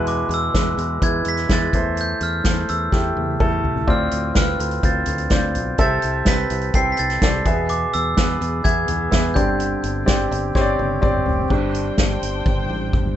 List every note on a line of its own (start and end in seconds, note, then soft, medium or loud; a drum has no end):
0.00 0.22 E2 medium
0.00 0.51 B2 medium
0.00 0.48 G#3 medium
0.00 0.48 E4 medium
0.00 0.47 B4 medium
0.07 0.30 D6 medium
0.07 closed hi-hat medium
0.29 0.49 E2 medium
0.29 closed hi-hat medium
0.34 1.06 E6 medium
0.54 0.74 E2 medium
0.54 0.98 G#3 medium
0.54 0.98 E4 medium
0.54 0.98 B4 medium
0.54 kick medium
0.54 snare loud
0.54 closed hi-hat medium
0.77 0.97 E2 medium
0.77 closed hi-hat medium
1.01 1.22 E2 loud
1.01 1.44 G#3 medium
1.01 1.45 E4 medium
1.01 1.45 B4 medium
1.01 1.27 G#6 medium
1.01 kick medium
1.01 closed hi-hat medium
1.25 1.45 E2 medium
1.25 1.52 B6 medium
1.25 closed hi-hat medium
1.37 snare soft
1.37 closed hi-hat soft
1.49 1.69 E2 medium
1.49 1.74 G#3 medium
1.49 1.73 E4 medium
1.49 1.74 B4 medium
1.49 2.00 A6 medium
1.49 kick loud
1.49 snare medium
1.49 closed hi-hat medium
1.73 2.12 E2 medium
1.73 2.42 E3 medium
1.73 2.38 A3 medium
1.73 2.38 E4 medium
1.73 2.38 C5 medium
1.73 kick medium
1.73 closed hi-hat medium
1.73 floor tom medium
1.97 2.24 G6 medium
1.97 closed hi-hat medium
2.21 2.41 E2 medium
2.21 2.67 F6 medium
2.21 closed hi-hat medium
2.44 2.65 E2 medium
2.44 2.88 A3 medium
2.44 2.88 E4 medium
2.44 2.88 C5 medium
2.44 kick medium
2.44 snare loud
2.44 closed hi-hat medium
2.69 2.89 E2 medium
2.69 3.61 E6 medium
2.69 closed hi-hat medium
2.92 3.12 E2 medium
2.92 3.35 A3 medium
2.92 3.35 E4 medium
2.92 3.35 G4 medium
2.92 kick medium
2.92 snare medium
3.16 3.36 E2 medium
3.16 high tom medium
3.28 high tom medium
3.40 3.60 E2 medium
3.40 3.83 A3 medium
3.40 3.83 E4 medium
3.40 3.83 A4 medium
3.40 kick loud
3.40 mid tom medium
3.63 3.84 C2 medium
3.63 floor tom medium
3.75 floor tom medium
3.87 4.08 D2 loud
3.87 4.55 A2 medium
3.87 4.31 C4 medium
3.87 4.30 F4 medium
3.87 4.30 D5 medium
3.87 4.34 F6 medium
3.87 kick medium
3.87 crash medium
4.11 4.32 D2 medium
4.11 closed hi-hat medium
4.35 4.55 D2 medium
4.35 4.78 C4 medium
4.35 4.78 F4 medium
4.35 4.78 B4 medium
4.35 4.86 F6 medium
4.35 kick loud
4.35 snare loud
4.35 closed hi-hat medium
4.60 4.79 D2 medium
4.60 closed hi-hat medium
4.71 closed hi-hat soft
4.83 5.03 D2 medium
4.83 5.26 C4 medium
4.83 5.26 F4 medium
4.83 5.26 C5 medium
4.83 5.33 A6 medium
4.83 kick loud
4.83 closed hi-hat medium
5.06 5.27 D2 medium
5.06 closed hi-hat medium
5.06 floor tom medium
5.18 closed hi-hat soft
5.30 5.56 D2 medium
5.30 5.74 C4 medium
5.30 5.74 F4 medium
5.30 5.74 D5 medium
5.30 5.81 G6 medium
5.30 kick loud
5.30 snare medium
5.30 closed hi-hat medium
5.54 5.75 B1 medium
5.54 closed hi-hat medium
5.54 floor tom medium
5.78 5.98 C2 loud
5.78 6.46 C3 medium
5.78 6.21 C4 medium
5.78 6.21 A4 medium
5.78 6.21 E5 medium
5.78 6.29 A6 medium
5.78 kick medium
5.78 closed hi-hat medium
6.02 6.23 C2 medium
6.02 closed hi-hat medium
6.25 6.46 C2 medium
6.25 6.69 C4 medium
6.25 6.69 A4 medium
6.25 6.69 B4 medium
6.25 6.71 B6 medium
6.25 kick loud
6.25 snare loud
6.25 closed hi-hat medium
6.50 6.70 C2 medium
6.50 closed hi-hat medium
6.61 closed hi-hat soft
6.74 6.94 C2 medium
6.74 7.17 C4 medium
6.74 7.17 A4 medium
6.74 7.17 G5 medium
6.74 6.92 C7 medium
6.74 kick loud
6.74 closed hi-hat medium
6.92 6.99 B6 medium
6.97 7.18 C2 medium
6.97 7.43 A6 medium
6.97 closed hi-hat medium
7.10 snare soft
7.10 closed hi-hat medium
7.22 7.41 C2 loud
7.22 7.46 C4 medium
7.22 7.46 A4 medium
7.22 7.46 D5 medium
7.22 kick loud
7.22 snare loud
7.22 closed hi-hat medium
7.45 7.85 E2 medium
7.45 8.13 B2 medium
7.45 8.10 B3 medium
7.45 8.10 G#4 medium
7.45 8.10 E5 medium
7.45 kick medium
7.45 closed hi-hat medium
7.45 floor tom medium
7.69 7.80 D6 medium
7.69 closed hi-hat medium
7.93 8.14 E2 medium
7.93 8.61 E6 medium
7.93 closed hi-hat medium
8.17 8.37 E2 medium
8.17 8.60 B3 medium
8.17 8.60 G#4 medium
8.17 8.60 B4 medium
8.17 kick loud
8.17 snare loud
8.17 closed hi-hat medium
8.41 8.61 E2 medium
8.41 closed hi-hat medium
8.64 8.84 E2 loud
8.64 9.07 B3 medium
8.64 9.07 G#4 medium
8.64 9.07 E5 medium
8.64 9.38 G#6 loud
8.64 kick loud
8.64 closed hi-hat medium
8.88 9.08 E2 medium
8.88 closed hi-hat medium
8.88 floor tom medium
9.11 9.32 E2 medium
9.11 9.36 B3 medium
9.11 9.36 G#4 medium
9.11 9.36 E5 medium
9.11 kick loud
9.11 snare loud
9.11 closed hi-hat medium
9.34 9.75 G1 medium
9.34 10.03 G2 medium
9.34 10.03 D3 medium
9.34 10.00 C4 medium
9.34 10.00 G4 medium
9.34 10.00 D5 medium
9.34 10.98 G6 medium
9.34 kick loud
9.34 closed hi-hat medium
9.34 floor tom medium
9.60 closed hi-hat medium
9.83 10.03 G1 medium
9.83 closed hi-hat medium
10.06 10.27 G1 medium
10.06 10.49 C4 medium
10.06 10.49 G4 medium
10.06 10.49 D5 medium
10.06 kick loud
10.06 snare loud
10.06 closed hi-hat medium
10.31 10.51 G1 medium
10.31 closed hi-hat medium
10.55 10.75 G1 loud
10.55 10.98 C4 medium
10.55 10.98 G4 medium
10.55 10.61 C#5 medium
10.55 kick loud
10.55 snare soft
10.61 11.01 D5 loud
10.79 10.99 G1 medium
10.79 high tom medium
11.02 11.22 G1 medium
11.02 11.45 C4 medium
11.02 11.45 G4 medium
11.02 11.45 D5 medium
11.02 kick loud
11.02 mid tom medium
11.14 mid tom medium
11.26 11.46 F1 medium
11.26 floor tom loud
11.38 floor tom medium
11.50 11.90 G1 medium
11.50 11.82 G3 medium
11.50 13.16 G3 medium
11.50 11.82 C4 soft
11.50 11.82 D4 medium
11.50 13.16 D4 medium
11.50 13.16 C5 medium
11.50 13.16 G5 medium
11.50 kick loud
11.50 crash medium
11.75 closed hi-hat medium
11.97 12.18 G1 medium
11.97 kick medium
11.97 snare loud
11.97 closed hi-hat medium
12.21 12.41 G1 medium
12.21 closed hi-hat medium
12.46 12.65 G1 loud
12.46 kick loud
12.46 high tom soft
12.69 12.89 A1 medium
12.69 mid tom medium
12.93 13.13 G1 medium
12.93 kick loud
12.93 mid tom medium
13.06 mid tom medium